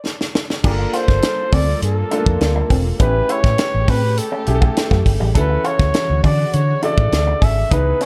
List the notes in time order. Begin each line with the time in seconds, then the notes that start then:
0.06 snare
0.21 snare
0.35 snare
0.50 snare
0.64 G1 A#3 D4 F4 G4 G#4 A#4, kick, crash
0.71 A4
0.79 muted clean electric guitar stroke
0.93 F4 C5, snare, closed hi-hat
1.08 G1, kick, snare
1.22 snare, closed hi-hat
1.52 D2 C4 D5, kick, open hi-hat
1.82 G2 A4, closed hi-hat
2.11 A3 D4 F4 A4, closed hi-hat
2.17 A#3
2.26 F2, kick
2.41 D2, muted clean electric guitar stroke, snare, closed hi-hat
2.55 D4
2.70 E1 C4, kick, open hi-hat
2.98 A1 C#3 A3 B3 C#4 E4 G4 B4, kick, closed hi-hat
3.06 C#4
3.29 E4 C#5, closed hi-hat
3.44 A2, muted clean electric guitar stroke, kick, snare
3.58 snare, closed hi-hat
3.74 A1
3.88 A2 C4 B4, kick, open hi-hat
4.17 A4, closed hi-hat
4.32 C#4
4.46 B1 C#4 E4 G4 G#4, muted clean electric guitar stroke, closed hi-hat
4.55 A4
4.61 A3, kick
4.77 snare, closed hi-hat
4.91 F#2 A3, kick, snare
5.06 G1, muted clean electric guitar stroke, kick, open hi-hat
5.20 A1 G3
5.35 D2 E3 C#4 D4 E4 F#4 A4 B4, kick, closed hi-hat
5.50 muted clean electric guitar stroke
5.64 F4 C#5, closed hi-hat
5.79 D2, kick, snare
5.94 snare, closed hi-hat
6.10 D2
6.23 D3 C#4 D5, kick, open hi-hat
6.53 D3 C#5, closed hi-hat
6.82 C#3 D4 E4 F#4 A4 D5, closed hi-hat
6.98 A2, kick
7.12 D2, muted clean electric guitar stroke, snare, closed hi-hat
7.27 D4
7.42 G#1 C#4 E5, kick, open hi-hat
7.70 C#2 C#3 B3 D4 D#4 E4 G#4 B4, kick, closed hi-hat
8.01 C#4, snare, closed hi-hat